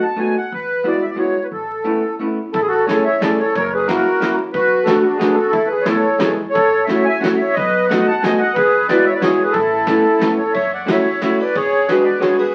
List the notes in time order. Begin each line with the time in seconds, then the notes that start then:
0.03 A5
0.16 A3 B3 D#4 F#4 G#5
0.38 F#5
0.52 E2 B4
0.84 G#3 B3 E4 F#4 D5
1.03 E5
1.10 D5
1.15 G#3 B3 E4 F#4 C#5
1.43 B4
1.52 A1 A4
1.84 A3 B3 C#4 E4
2.19 A3 B3 C#4 E4
2.53 A1 E4 A4, kick, closed hi-hat
2.61 G#4
2.68 F#4 A4
2.86 A3 C#4 E4 G#4 A4 C#5, snare, closed hi-hat
3.04 C#5 E5
3.21 A3 C#4 E4 G#4 A4 D5, snare, closed hi-hat
3.40 A4 C#5
3.55 F#1 A#4 C#5, kick, closed hi-hat
3.72 G#4 B4
3.87 A#3 C#4 E4 F#4 A#4, snare, closed hi-hat
4.20 A#3 C#4 E4 F#4, snare, closed hi-hat
4.53 B1 F#4 B4, kick, closed hi-hat
4.83 A3 B3 D4 A4, snare, closed hi-hat
4.87 F#4
5.00 F#4
5.05 D4
5.16 A3 B3 D4 G#4
5.21 F#4, snare, closed hi-hat
5.34 F#4 A4
5.49 E4 A4
5.53 E2, kick, closed hi-hat
5.66 B4
5.72 G#4
5.81 A3 A4 C#5
5.86 B3 E4 A4, snare, closed hi-hat
6.18 E2 G#3 B3 E4 G#4, snare, closed hi-hat
6.50 A4 C#5
6.55 A1, kick, closed hi-hat
6.84 A3 C#4 E5
6.88 E4 F#4 C#5, snare, closed hi-hat
7.05 E5 G#5
7.20 A3 C#4 E4 F#4 F#5, snare, closed hi-hat
7.25 C#5
7.36 E5
7.41 C#5
7.54 B1 B4 D#5, kick, closed hi-hat
7.88 A3 B3 D#4 F#4 F#5, snare, closed hi-hat
7.92 D#5
8.07 F#5 A5
8.22 A3 B3 D#4 F#4 D#5 G#5, snare, closed hi-hat
8.39 D#5 F#5
8.54 E2 G#4 B4, kick, closed hi-hat
8.89 G#3 B3 E4 F#4 B4 D5, snare, closed hi-hat
9.06 C#5 E5
9.13 B4 D5
9.20 G#3 B3 E4 F#4 G#4 C#5, snare, closed hi-hat
9.43 G#4 B4
9.51 A1 E4 A4, kick, closed hi-hat
9.87 A3 B3 C#4 E4, snare, closed hi-hat
10.19 A3 B3 C#4 E4, snare, closed hi-hat
10.38 A4 C#5
10.54 F#1 C#5 E5, kick, ride
10.73 D5 F#5
10.86 A3 C#4 E4 F#4, snare, ride
10.91 C#5 E5
11.21 A3 C#4 E4 F#4 C#5 E5, snare, ride
11.40 B4 D5, ride
11.55 G#1 G#4 C#5, kick, ride
11.88 G#3 B3 D4 F#4 G#4 B4, snare, ride
12.04 B4 D5
12.19 G#3 B3 D4 F#4 G#4 C#5, snare, ride
12.38 G#4 B4, ride